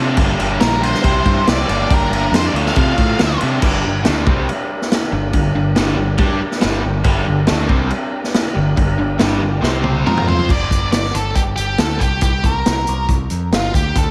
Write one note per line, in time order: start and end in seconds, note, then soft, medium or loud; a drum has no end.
0.00 0.19 C3 medium
0.00 0.17 D3 medium
0.00 0.18 F3 medium
0.00 0.19 A3 medium
0.00 0.17 D4 medium
0.00 0.18 D4 medium
0.00 0.17 F4 medium
0.00 0.18 F4 medium
0.00 0.18 A4 medium
0.17 0.33 G1 loud
0.17 0.61 G2 loud
0.17 0.62 D3 medium
0.17 0.41 G3 loud
0.17 0.40 A#3 loud
0.17 1.04 D4 medium
0.17 1.03 G4 medium
0.17 1.04 A#4 medium
0.17 kick loud
0.17 crash medium
0.21 0.39 D4 loud
0.21 0.37 G4 loud
0.39 0.56 G1 medium
0.39 0.58 G3 medium
0.39 0.60 A#3 medium
0.39 0.60 D4 medium
0.39 0.61 G4 medium
0.39 crash medium
0.59 0.93 A#1 medium
0.59 0.84 G3 medium
0.59 0.83 A#3 medium
0.59 0.81 D4 medium
0.59 0.80 G4 medium
0.59 0.83 A#4 medium
0.59 snare loud
0.59 crash medium
0.82 1.02 G3 medium
0.82 1.04 A#3 medium
0.82 1.03 D4 medium
0.82 1.03 G4 medium
0.82 1.50 C5 loud
0.82 crash medium
0.94 snare soft
1.02 1.20 C2 loud
1.02 1.45 C3 loud
1.02 1.46 E3 loud
1.02 1.47 G3 loud
1.02 1.68 C4 loud
1.02 1.68 E4 medium
1.02 1.47 E4 loud
1.02 1.68 G4 medium
1.02 1.47 G4 loud
1.02 1.68 C5 medium
1.02 kick loud
1.02 crash medium
1.25 1.41 G2 loud
1.25 kick medium
1.25 crash medium
1.46 1.63 C2 medium
1.46 1.67 C3 medium
1.46 1.68 E3 loud
1.46 1.68 G3 loud
1.46 1.68 E4 loud
1.46 1.68 G4 loud
1.46 1.81 D5 medium
1.46 snare loud
1.46 crash medium
1.69 1.85 G1 medium
1.69 1.88 G2 medium
1.69 1.89 D3 medium
1.69 1.89 G3 medium
1.69 1.90 A#3 medium
1.69 1.91 D4 medium
1.69 2.54 D4 medium
1.69 1.91 G4 medium
1.69 2.54 G4 medium
1.69 2.54 A#4 medium
1.69 crash medium
1.82 1.92 D5 medium
1.89 2.06 G1 loud
1.89 2.33 G2 loud
1.89 2.33 D3 loud
1.89 2.14 G3 loud
1.89 2.13 A#3 loud
1.89 2.12 D4 loud
1.89 2.10 G4 loud
1.89 kick loud
1.89 crash medium
1.94 2.35 A#4 medium
2.11 2.27 G1 medium
2.11 2.33 A#3 medium
2.11 2.33 D4 medium
2.11 2.35 G4 medium
2.11 crash medium
2.15 2.32 G3 medium
2.32 2.48 F2 medium
2.32 2.53 G3 medium
2.32 2.54 A#3 medium
2.32 2.54 D4 medium
2.32 snare loud
2.32 crash medium
2.36 2.54 G4 medium
2.36 2.46 C5 medium
2.47 2.52 D5 loud
2.54 2.70 D2 medium
2.54 3.18 D3 medium
2.54 3.39 F3 loud
2.54 3.19 A3 medium
2.54 3.20 D4 medium
2.54 3.62 D4 medium
2.54 3.21 F4 medium
2.54 3.62 F4 medium
2.54 3.62 A4 medium
2.54 crash medium
2.66 2.77 F5 medium
2.66 snare soft
2.76 2.92 C3 loud
2.76 3.38 F5 medium
2.76 kick loud
2.76 crash medium
2.98 3.13 A2 loud
2.98 kick medium
2.98 crash medium
3.19 3.35 D2 medium
3.19 3.61 D3 loud
3.19 3.42 A3 medium
3.19 3.41 D4 loud
3.19 3.39 F4 loud
3.19 snare loud
3.19 crash medium
3.40 3.57 C3 medium
3.40 3.62 D3 medium
3.40 3.62 F3 medium
3.40 3.62 A3 medium
3.40 3.61 D4 medium
3.40 3.60 F4 medium
3.40 crash medium
3.62 3.82 G1 loud
3.62 3.83 G2 loud
3.62 3.83 D3 loud
3.62 3.84 G3 loud
3.62 7.03 D4 medium
3.62 7.03 G4 medium
3.62 7.03 A#4 medium
3.62 kick loud
3.62 crash loud
3.62 crash medium
3.85 4.05 G1 medium
3.85 4.01 G2 medium
3.85 4.02 D3 medium
4.04 4.26 D2 medium
4.04 4.26 D3 medium
4.04 4.26 A3 medium
4.04 4.26 D4 medium
4.04 snare loud
4.04 crash medium
4.26 4.47 C2 medium
4.26 4.47 C3 medium
4.26 4.47 G3 loud
4.26 4.48 C4 loud
4.26 kick loud
4.48 muted overdriven electric guitar stroke medium
4.48 muted distorted electric guitar stroke medium
4.48 muted picked electric bass stroke soft
4.48 crash medium
4.82 snare soft
4.92 snare loud
4.92 crash medium
5.12 5.32 G1 medium
5.12 5.29 G2 medium
5.12 5.30 D3 medium
5.33 5.54 G1 medium
5.33 5.51 G2 medium
5.33 5.51 D3 medium
5.33 kick medium
5.33 crash medium
5.55 5.75 G1 medium
5.55 5.72 G2 medium
5.55 5.72 D3 medium
5.75 5.96 G1 medium
5.75 5.95 G2 medium
5.75 5.96 D3 loud
5.75 5.98 G3 loud
5.75 snare loud
5.75 crash medium
5.96 6.17 G1 medium
5.96 6.14 G2 medium
5.96 6.15 D3 medium
6.18 6.39 G2 loud
6.18 6.39 G3 medium
6.18 6.40 D4 loud
6.18 6.40 G4 loud
6.18 kick loud
6.18 crash medium
6.40 muted overdriven electric guitar stroke medium
6.40 muted distorted electric guitar stroke medium
6.40 muted picked electric bass stroke soft
6.51 snare soft
6.61 6.83 G1 medium
6.61 6.82 G2 medium
6.61 6.82 D3 loud
6.61 6.83 G3 medium
6.61 snare loud
6.61 crash medium
6.83 7.04 G1 medium
6.83 7.01 G2 medium
6.83 7.01 D3 medium
7.04 7.25 G1 loud
7.04 7.24 G2 loud
7.04 7.25 D3 loud
7.04 7.26 G3 loud
7.04 9.61 D4 medium
7.04 9.61 G4 medium
7.04 9.61 A#4 medium
7.04 kick loud
7.04 crash medium
7.26 7.47 G1 medium
7.26 7.43 G2 medium
7.26 7.44 D3 medium
7.47 7.67 D3 medium
7.47 7.68 A3 medium
7.47 7.69 D4 loud
7.47 snare loud
7.47 crash medium
7.51 7.68 D2 medium
7.68 7.89 C2 loud
7.68 7.90 C3 medium
7.68 7.90 G3 loud
7.68 7.90 C4 loud
7.68 kick medium
7.90 muted distorted electric guitar stroke medium
7.90 muted overdriven electric guitar stroke medium
7.90 muted picked electric bass stroke soft
7.90 crash medium
8.24 snare soft
8.34 snare loud
8.34 crash medium
8.56 8.76 G1 medium
8.56 8.73 G2 medium
8.56 8.74 D3 medium
8.77 8.97 G1 medium
8.77 8.95 G2 medium
8.77 8.95 D3 medium
8.77 kick medium
8.77 crash medium
8.98 9.19 G1 medium
8.98 9.16 G2 medium
8.98 9.16 D3 medium
9.19 9.41 G1 medium
9.19 9.40 G2 medium
9.19 9.40 D3 medium
9.19 9.41 G3 medium
9.19 snare loud
9.19 crash medium
9.42 9.62 G1 medium
9.42 9.59 G2 medium
9.42 9.59 D3 medium
9.62 10.03 C2 medium
9.62 10.05 C3 medium
9.62 10.06 G3 loud
9.62 10.04 C4 medium
9.62 10.05 C4 loud
9.62 10.06 G4 medium
9.62 10.05 C5 medium
9.62 snare medium
9.84 high tom medium
10.05 10.46 F2 medium
10.05 10.49 F3 medium
10.05 10.49 C4 medium
10.05 10.49 F4 medium
10.05 10.49 F4 loud
10.05 10.27 A#4 medium
10.05 10.49 C5 medium
10.05 mid tom medium
10.17 mid tom medium
10.28 10.50 C5 medium
10.28 floor tom medium
10.39 floor tom medium
10.49 10.67 G1 medium
10.49 10.91 D5 medium
10.49 kick loud
10.49 crash medium
10.71 10.89 G1 medium
10.71 kick medium
10.71 closed hi-hat medium
10.92 11.10 G1 medium
10.92 11.15 D5 medium
10.92 snare medium
10.92 closed hi-hat medium
11.04 snare soft
11.14 11.32 G1 medium
11.14 11.34 A4 medium
11.14 closed hi-hat medium
11.35 11.54 G1 medium
11.35 11.41 G4 medium
11.35 kick medium
11.35 closed hi-hat medium
11.56 11.76 G1 medium
11.56 11.79 G4 medium
11.56 closed hi-hat medium
11.78 11.97 D2 medium
11.78 12.02 A4 medium
11.78 snare loud
11.78 closed hi-hat medium
11.99 12.19 C2 medium
11.99 12.20 G4 medium
11.99 kick medium
11.99 closed hi-hat medium
12.21 12.40 C2 medium
12.21 12.45 G4 medium
12.21 kick loud
12.21 closed hi-hat medium
12.43 12.61 C2 medium
12.43 13.06 A#4 medium
12.43 kick medium
12.43 closed hi-hat medium
12.66 12.84 C2 medium
12.66 snare loud
12.66 closed hi-hat medium
12.87 13.06 C2 medium
12.87 closed hi-hat medium
13.08 13.27 C2 medium
13.08 kick medium
13.08 closed hi-hat medium
13.30 13.49 F2 medium
13.30 closed hi-hat medium
13.51 13.70 G1 medium
13.51 13.75 F4 medium
13.51 snare loud
13.51 closed hi-hat medium
13.74 13.92 D2 medium
13.74 13.97 G4 medium
13.74 kick medium
13.74 closed hi-hat medium
13.95 14.11 D2 medium
13.95 14.11 A4 loud
13.95 kick loud
13.95 closed hi-hat medium